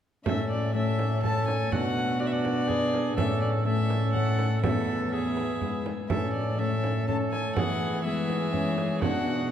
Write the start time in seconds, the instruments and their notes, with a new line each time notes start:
0.25 cello A2, harp A2, trombone C#4, cor anglais A4, violin E5, frame drum
0.50 violin D5
0.74 harp A3 C#4 C#5, trombone C#4, cor anglais A4, violin E5
0.99 frame drum
1.23 harp A3 C#4 C#5, trombone C#4, cor anglais A4, violin A5, frame drum
1.48 violin G#5, frame drum
1.72 cello B2, harp B2, trombone D4, cor anglais F#4, violin F#5, frame drum
2.20 harp D4 B4, trombone D4, cor anglais F#4, violin D5
2.26 violin E5
2.33 violin D5
2.45 frame drum
2.69 harp D4 B4, cor anglais G#4, frame drum
2.94 frame drum
3.16 harp A2, cello A2, trombone C#4, cor anglais A4, violin E5, frame drum
3.41 violin D5
3.65 harp A3 C#4 C#5, trombone C#4, cor anglais A4, violin E5
3.90 frame drum
4.13 harp A3 C#4 C#5, violin F#5, frame drum
4.39 frame drum
4.62 harp E2 A3 E4 B4, cello E2, trombone B3, cor anglais A4, violin E5, frame drum
5.11 trombone B3, cor anglais G#4, violin E5
5.37 frame drum
5.61 harp G#3 E4 B4, frame drum
5.86 frame drum
6.09 cello A2, harp A2, trombone C#4, cor anglais A4, violin E5, frame drum
6.33 violin D5
6.59 harp A3 E4 C#5, trombone C#4, cor anglais A4, violin E5
6.84 frame drum
7.08 harp A3 E4 C#5, trombone C#4, cor anglais A4, violin A5, frame drum
7.32 violin G#5, frame drum
7.56 harp E3, cello E3, trombone B3, cor anglais G#4, violin F#5, frame drum
8.04 harp G#3 E4 B4, trombone B3, cor anglais G#4, violin E5
8.30 frame drum
8.53 harp G#3 E4 B4, trombone C#4, frame drum
8.78 frame drum
9.01 harp B2, cello B2, trombone D4, cor anglais F#4, violin F#5, frame drum